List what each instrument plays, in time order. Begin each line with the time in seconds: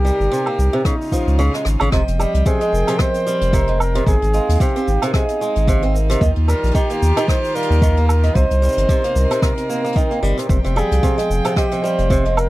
Already playing: sub bass C2, string quartet C3 C4 D#4 A#4, flugelhorn G4
0.05 steel-string acoustic guitar G3, shaker
0.20 sub bass G1, shaker
0.32 steel-string acoustic guitar C3, shaker
0.46 steel-string acoustic guitar A#3, low woodblock
0.59 sub bass C2, shaker
0.73 steel-string acoustic guitar C3
0.85 steel-string acoustic guitar C#3, string quartet C#3 C#4 D#4 F4, flugelhorn D#4, kick, cross-stick, shaker
1.01 shaker
1.04 shaker
1.07 shaker
1.10 steel-string acoustic guitar F3, kick, shaker
1.13 shaker
1.17 shaker
1.25 sub bass C#2, shaker
1.28 shaker
1.39 sub bass C#2, steel-string acoustic guitar C#3, shaker
1.54 steel-string acoustic guitar G#3, cross-stick, shaker
1.65 sub bass G#1, cross-stick, shaker
1.80 sub bass G#1, steel-string acoustic guitar C#3, low woodblock, shaker
1.92 sub bass F1, steel-string acoustic guitar C3, string quartet F3 C4 G5, vibraphone D#5, kick, cross-stick, shaker
2.08 sub bass F1, closed hi-hat, shaker
2.19 steel-string acoustic guitar G3, flugelhorn G4, low woodblock, shaker
2.34 sub bass C2, closed hi-hat, shaker
2.46 steel-string acoustic guitar C3, flugelhorn G#4, kick, shaker
2.61 steel-string acoustic guitar G#3, closed hi-hat, shaker
2.73 sub bass F1, vibraphone A#4, shaker
2.87 steel-string acoustic guitar C3, closed hi-hat, low woodblock, shaker
2.99 steel-string acoustic guitar C3, flugelhorn C5, kick, cross-stick, shaker
3.14 closed hi-hat, shaker
3.27 steel-string acoustic guitar G3, shaker
3.41 sub bass F1, closed hi-hat, shaker
3.53 steel-string acoustic guitar C3, vibraphone A#5, kick, shaker
3.67 steel-string acoustic guitar G#3, closed hi-hat
3.80 flugelhorn A#4, low woodblock, shaker
3.95 steel-string acoustic guitar C3, closed hi-hat, shaker
4.06 sub bass G#1, steel-string acoustic guitar C3, string quartet D#4, flugelhorn G#4, kick, shaker
4.22 sub bass G#1, closed hi-hat, shaker
4.34 steel-string acoustic guitar G#3, vibraphone F5, shaker
4.49 sub bass D#2, closed hi-hat, shaker
4.55 closed hi-hat
4.60 steel-string acoustic guitar C3, flugelhorn G4, kick, closed hi-hat, shaker
4.68 closed hi-hat
4.76 steel-string acoustic guitar C4, closed hi-hat, shaker
4.88 sub bass G#1, shaker
5.02 steel-string acoustic guitar C3, closed hi-hat, low woodblock, shaker
5.08 flugelhorn A#4
5.14 steel-string acoustic guitar C3, flugelhorn G#4, vibraphone D#5, kick, cross-stick, shaker
5.28 closed hi-hat, shaker
5.41 steel-string acoustic guitar G#3, shaker
5.56 sub bass G#1, closed hi-hat, shaker
5.67 steel-string acoustic guitar C3, kick, shaker
5.82 steel-string acoustic guitar C4, closed hi-hat
5.94 vibraphone A#4, shaker
6.10 steel-string acoustic guitar C3, closed hi-hat, shaker
6.21 sub bass D#2, string quartet D#3 F4 G4, steel-string acoustic guitar D#3, kick, shaker
6.36 sub bass D#2, closed hi-hat
6.48 steel-string acoustic guitar G3, flugelhorn A#4, low woodblock, shaker
6.63 sub bass A#1, closed hi-hat, shaker
6.66 closed hi-hat
6.71 steel-string acoustic guitar D#3, flugelhorn G4, vibraphone A#5, kick, closed hi-hat, shaker
6.90 steel-string acoustic guitar A#3, closed hi-hat, shaker
7.02 sub bass D#2, shaker
7.17 steel-string acoustic guitar D#3, closed hi-hat, low woodblock, shaker
7.28 steel-string acoustic guitar D#3, flugelhorn C5, kick, cross-stick, shaker
7.44 closed hi-hat, shaker
7.52 steel-string acoustic guitar G3, flugelhorn A#4, vibraphone F5, closed hi-hat
7.56 shaker
7.61 closed hi-hat
7.62 closed hi-hat
7.70 sub bass D#2, shaker
7.82 steel-string acoustic guitar D#3, kick, shaker
7.97 steel-string acoustic guitar A#3, closed hi-hat
8.08 flugelhorn A#4, low woodblock, shaker
8.24 steel-string acoustic guitar D#3, closed hi-hat, shaker
8.35 sub bass C2, steel-string acoustic guitar C3, string quartet C3 C4 A#4, flugelhorn C5, vibraphone D#5, kick, shaker
8.51 sub bass C2, closed hi-hat, shaker
8.62 steel-string acoustic guitar G3, shaker
8.68 shaker
8.72 shaker
8.77 sub bass G1, closed hi-hat, shaker
8.89 steel-string acoustic guitar C3, kick, shaker
9.04 steel-string acoustic guitar A#3, closed hi-hat, shaker
9.16 sub bass C2, vibraphone A#4, shaker
9.31 steel-string acoustic guitar C3, closed hi-hat, low woodblock, shaker
9.42 steel-string acoustic guitar C3, flugelhorn A#4, kick, cross-stick, shaker
9.57 closed hi-hat, shaker
9.70 steel-string acoustic guitar A#3, shaker
9.84 steel-string acoustic guitar A#3, closed hi-hat, shaker
9.87 closed hi-hat
9.92 steel-string acoustic guitar D#3, vibraphone G5, kick, closed hi-hat
9.98 shaker
10.11 steel-string acoustic guitar A#3, closed hi-hat
10.23 sub bass G1, steel-string acoustic guitar G3, shaker
10.38 steel-string acoustic guitar C3, closed hi-hat, shaker
10.49 sub bass F1, steel-string acoustic guitar C3, string quartet F3 C4 G5, kick, shaker
10.64 sub bass F1, steel-string acoustic guitar C3, closed hi-hat, shaker
10.76 steel-string acoustic guitar G3, flugelhorn G#4, vibraphone F5, low woodblock, shaker
10.92 sub bass C2, closed hi-hat, shaker
11.03 steel-string acoustic guitar C3, kick, shaker
11.18 steel-string acoustic guitar G#3, closed hi-hat, shaker
11.30 sub bass F1, shaker
11.45 steel-string acoustic guitar C3, closed hi-hat, low woodblock, shaker
11.56 steel-string acoustic guitar C3, flugelhorn G4, vibraphone D#5, kick, cross-stick, shaker
11.72 steel-string acoustic guitar C3, closed hi-hat, shaker
11.83 steel-string acoustic guitar G3, flugelhorn C5, shaker
11.98 sub bass F1, closed hi-hat, shaker
12.10 steel-string acoustic guitar C3, kick, shaker
12.25 steel-string acoustic guitar G#3, closed hi-hat
12.37 vibraphone A#4, flugelhorn A#4, low woodblock, shaker